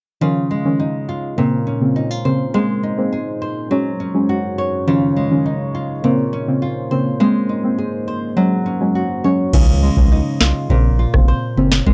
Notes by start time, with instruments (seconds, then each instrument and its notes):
0.21 nylon-string guitar C#3 F4, ambient pad C#3 G#3 D#4 F4 C#5, synth stab D#3 F3 C#4
0.51 nylon-string guitar G#3
0.65 synth stab D#3 F3 C#4
0.80 nylon-string guitar D#4
1.09 nylon-string guitar F4
1.38 ambient pad A#2 A#3 C#4 C5, nylon-string guitar A#2, synth stab C#3 A#3 C4
1.67 nylon-string guitar C#4
1.81 synth stab C#3 A#3 C4
1.96 nylon-string guitar D#4
2.11 nylon-string guitar F4
2.25 synth stab C#3 A#3 C4, nylon-string guitar C5
2.54 ambient pad G#2 G#3 D#4 A#4, synth stab G#3 A#3 C4, nylon-string guitar G#3 C5
2.83 nylon-string guitar D#4
2.98 synth stab G#3 A#3 C4
3.13 nylon-string guitar G#4
3.42 nylon-string guitar C5
3.70 ambient pad F#2 F#3 C#4 G#4 C#5, synth stab F#3 G#3 C#4, nylon-string guitar F#3
4.00 nylon-string guitar C#4
4.14 synth stab F#3 G#3 C#4
4.29 nylon-string guitar F#4
4.58 nylon-string guitar C#5
4.87 ambient pad C#3 G#3 D#4 F4, nylon-string guitar C#3 F4, synth stab D#3 F3 C#4
5.17 nylon-string guitar G#3
5.31 synth stab D#3 F3 C#4
5.46 nylon-string guitar D#4
5.75 nylon-string guitar F4
6.03 ambient pad A#2 A#3 C#4 C5, nylon-string guitar A#2, synth stab C#3 A#3 C4
6.33 nylon-string guitar C#4
6.47 synth stab C#3 A#3 C4
6.62 nylon-string guitar F4
6.91 synth stab C#3 A#3 C4, nylon-string guitar C5
7.20 ambient pad G#2 G#3 D#4, synth stab G#3 A#3 C4, nylon-string guitar G#3 C5
7.49 nylon-string guitar D#4
7.63 synth stab G#3 A#3 C4
7.78 nylon-string guitar G#4
8.08 nylon-string guitar C5
8.36 ambient pad F#2 F#3 C#4 C#5, synth stab F#3 G#3 C#4, nylon-string guitar F#3
8.66 nylon-string guitar C#4
8.80 synth stab F#3 G#3 C#4
8.95 nylon-string guitar F#4
9.24 synth stab F#3 G#3 C#4, nylon-string guitar C#5
9.53 analog synth bass C#2, nylon-string guitar C#3, synth stab D#3 F3 C#4, kick, crash
9.83 nylon-string guitar G#3
9.97 analog synth bass C#2, synth stab D#3 F3 C#4, kick
10.12 nylon-string guitar D#4
10.41 analog synth bass C2, nylon-string guitar F4, snare
10.70 analog synth bass A#1, nylon-string guitar A#2, synth stab C#3 A#3 C4, kick
10.99 nylon-string guitar F4
11.13 analog synth bass F1, synth stab C#3 A#3 C4, kick, cross-stick
11.28 nylon-string guitar C5
11.57 analog synth bass F#1, synth stab C#3 A#3 C4, nylon-string guitar C#4
11.72 snare
11.86 analog synth bass G#1, synth stab G#3 A#3 C4, nylon-string guitar G#3, kick